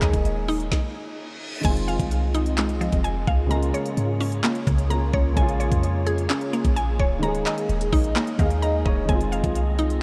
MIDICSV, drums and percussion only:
0, 0, Header, 1, 2, 480
1, 0, Start_track
1, 0, Key_signature, -4, "minor"
1, 0, Tempo, 465116
1, 1699, Time_signature, 4, 2, 24, 8
1, 10346, End_track
2, 0, Start_track
2, 0, Title_t, "Drums"
2, 18, Note_on_c, 9, 39, 94
2, 19, Note_on_c, 9, 36, 85
2, 23, Note_on_c, 9, 42, 79
2, 122, Note_off_c, 9, 36, 0
2, 122, Note_off_c, 9, 39, 0
2, 126, Note_off_c, 9, 42, 0
2, 139, Note_on_c, 9, 36, 96
2, 139, Note_on_c, 9, 42, 69
2, 242, Note_off_c, 9, 36, 0
2, 243, Note_off_c, 9, 42, 0
2, 260, Note_on_c, 9, 42, 82
2, 363, Note_off_c, 9, 42, 0
2, 499, Note_on_c, 9, 46, 74
2, 602, Note_off_c, 9, 46, 0
2, 619, Note_on_c, 9, 42, 53
2, 722, Note_off_c, 9, 42, 0
2, 739, Note_on_c, 9, 36, 107
2, 739, Note_on_c, 9, 38, 88
2, 843, Note_off_c, 9, 36, 0
2, 843, Note_off_c, 9, 38, 0
2, 1699, Note_on_c, 9, 36, 114
2, 1699, Note_on_c, 9, 42, 77
2, 1699, Note_on_c, 9, 49, 105
2, 1802, Note_off_c, 9, 36, 0
2, 1802, Note_off_c, 9, 42, 0
2, 1802, Note_off_c, 9, 49, 0
2, 1822, Note_on_c, 9, 42, 58
2, 1925, Note_off_c, 9, 42, 0
2, 1944, Note_on_c, 9, 42, 81
2, 2047, Note_off_c, 9, 42, 0
2, 2059, Note_on_c, 9, 36, 102
2, 2060, Note_on_c, 9, 42, 72
2, 2163, Note_off_c, 9, 36, 0
2, 2163, Note_off_c, 9, 42, 0
2, 2180, Note_on_c, 9, 42, 82
2, 2284, Note_off_c, 9, 42, 0
2, 2419, Note_on_c, 9, 42, 76
2, 2522, Note_off_c, 9, 42, 0
2, 2539, Note_on_c, 9, 42, 57
2, 2642, Note_off_c, 9, 42, 0
2, 2658, Note_on_c, 9, 42, 92
2, 2660, Note_on_c, 9, 39, 125
2, 2761, Note_off_c, 9, 42, 0
2, 2763, Note_off_c, 9, 39, 0
2, 2776, Note_on_c, 9, 42, 55
2, 2880, Note_off_c, 9, 42, 0
2, 2903, Note_on_c, 9, 42, 76
2, 3006, Note_off_c, 9, 42, 0
2, 3017, Note_on_c, 9, 42, 57
2, 3019, Note_on_c, 9, 36, 90
2, 3120, Note_off_c, 9, 42, 0
2, 3122, Note_off_c, 9, 36, 0
2, 3142, Note_on_c, 9, 42, 80
2, 3245, Note_off_c, 9, 42, 0
2, 3379, Note_on_c, 9, 36, 109
2, 3483, Note_off_c, 9, 36, 0
2, 3619, Note_on_c, 9, 42, 78
2, 3722, Note_off_c, 9, 42, 0
2, 3741, Note_on_c, 9, 42, 61
2, 3844, Note_off_c, 9, 42, 0
2, 3863, Note_on_c, 9, 42, 81
2, 3966, Note_off_c, 9, 42, 0
2, 3979, Note_on_c, 9, 42, 69
2, 4082, Note_off_c, 9, 42, 0
2, 4100, Note_on_c, 9, 42, 85
2, 4203, Note_off_c, 9, 42, 0
2, 4339, Note_on_c, 9, 46, 73
2, 4442, Note_off_c, 9, 46, 0
2, 4459, Note_on_c, 9, 42, 57
2, 4562, Note_off_c, 9, 42, 0
2, 4577, Note_on_c, 9, 42, 90
2, 4579, Note_on_c, 9, 39, 120
2, 4681, Note_off_c, 9, 42, 0
2, 4682, Note_off_c, 9, 39, 0
2, 4697, Note_on_c, 9, 42, 53
2, 4800, Note_off_c, 9, 42, 0
2, 4819, Note_on_c, 9, 36, 104
2, 4822, Note_on_c, 9, 42, 74
2, 4922, Note_off_c, 9, 36, 0
2, 4926, Note_off_c, 9, 42, 0
2, 4937, Note_on_c, 9, 42, 59
2, 5040, Note_off_c, 9, 42, 0
2, 5061, Note_on_c, 9, 42, 84
2, 5164, Note_off_c, 9, 42, 0
2, 5299, Note_on_c, 9, 36, 107
2, 5403, Note_off_c, 9, 36, 0
2, 5539, Note_on_c, 9, 36, 110
2, 5539, Note_on_c, 9, 42, 79
2, 5642, Note_off_c, 9, 42, 0
2, 5643, Note_off_c, 9, 36, 0
2, 5661, Note_on_c, 9, 42, 58
2, 5765, Note_off_c, 9, 42, 0
2, 5784, Note_on_c, 9, 42, 79
2, 5887, Note_off_c, 9, 42, 0
2, 5899, Note_on_c, 9, 36, 103
2, 5900, Note_on_c, 9, 42, 69
2, 6003, Note_off_c, 9, 36, 0
2, 6003, Note_off_c, 9, 42, 0
2, 6021, Note_on_c, 9, 42, 83
2, 6124, Note_off_c, 9, 42, 0
2, 6260, Note_on_c, 9, 42, 74
2, 6363, Note_off_c, 9, 42, 0
2, 6379, Note_on_c, 9, 42, 54
2, 6483, Note_off_c, 9, 42, 0
2, 6498, Note_on_c, 9, 42, 89
2, 6500, Note_on_c, 9, 39, 120
2, 6601, Note_off_c, 9, 42, 0
2, 6603, Note_off_c, 9, 39, 0
2, 6617, Note_on_c, 9, 42, 54
2, 6720, Note_off_c, 9, 42, 0
2, 6743, Note_on_c, 9, 42, 77
2, 6846, Note_off_c, 9, 42, 0
2, 6857, Note_on_c, 9, 42, 54
2, 6859, Note_on_c, 9, 36, 92
2, 6961, Note_off_c, 9, 42, 0
2, 6962, Note_off_c, 9, 36, 0
2, 6981, Note_on_c, 9, 42, 80
2, 7085, Note_off_c, 9, 42, 0
2, 7219, Note_on_c, 9, 36, 108
2, 7323, Note_off_c, 9, 36, 0
2, 7459, Note_on_c, 9, 42, 81
2, 7562, Note_off_c, 9, 42, 0
2, 7581, Note_on_c, 9, 42, 61
2, 7685, Note_off_c, 9, 42, 0
2, 7699, Note_on_c, 9, 39, 100
2, 7703, Note_on_c, 9, 42, 81
2, 7802, Note_off_c, 9, 39, 0
2, 7807, Note_off_c, 9, 42, 0
2, 7820, Note_on_c, 9, 42, 70
2, 7923, Note_off_c, 9, 42, 0
2, 7940, Note_on_c, 9, 42, 69
2, 8043, Note_off_c, 9, 42, 0
2, 8059, Note_on_c, 9, 42, 72
2, 8163, Note_off_c, 9, 42, 0
2, 8179, Note_on_c, 9, 46, 74
2, 8180, Note_on_c, 9, 36, 99
2, 8282, Note_off_c, 9, 46, 0
2, 8283, Note_off_c, 9, 36, 0
2, 8299, Note_on_c, 9, 42, 57
2, 8402, Note_off_c, 9, 42, 0
2, 8418, Note_on_c, 9, 42, 88
2, 8419, Note_on_c, 9, 39, 124
2, 8521, Note_off_c, 9, 42, 0
2, 8523, Note_off_c, 9, 39, 0
2, 8536, Note_on_c, 9, 42, 56
2, 8639, Note_off_c, 9, 42, 0
2, 8659, Note_on_c, 9, 36, 99
2, 8662, Note_on_c, 9, 42, 76
2, 8762, Note_off_c, 9, 36, 0
2, 8766, Note_off_c, 9, 42, 0
2, 8777, Note_on_c, 9, 42, 57
2, 8880, Note_off_c, 9, 42, 0
2, 8901, Note_on_c, 9, 42, 81
2, 9005, Note_off_c, 9, 42, 0
2, 9139, Note_on_c, 9, 36, 106
2, 9242, Note_off_c, 9, 36, 0
2, 9378, Note_on_c, 9, 42, 77
2, 9379, Note_on_c, 9, 36, 113
2, 9482, Note_off_c, 9, 36, 0
2, 9482, Note_off_c, 9, 42, 0
2, 9501, Note_on_c, 9, 42, 58
2, 9604, Note_off_c, 9, 42, 0
2, 9623, Note_on_c, 9, 42, 80
2, 9726, Note_off_c, 9, 42, 0
2, 9739, Note_on_c, 9, 36, 99
2, 9739, Note_on_c, 9, 42, 68
2, 9842, Note_off_c, 9, 36, 0
2, 9843, Note_off_c, 9, 42, 0
2, 9860, Note_on_c, 9, 42, 84
2, 9963, Note_off_c, 9, 42, 0
2, 10099, Note_on_c, 9, 42, 75
2, 10202, Note_off_c, 9, 42, 0
2, 10219, Note_on_c, 9, 42, 55
2, 10322, Note_off_c, 9, 42, 0
2, 10346, End_track
0, 0, End_of_file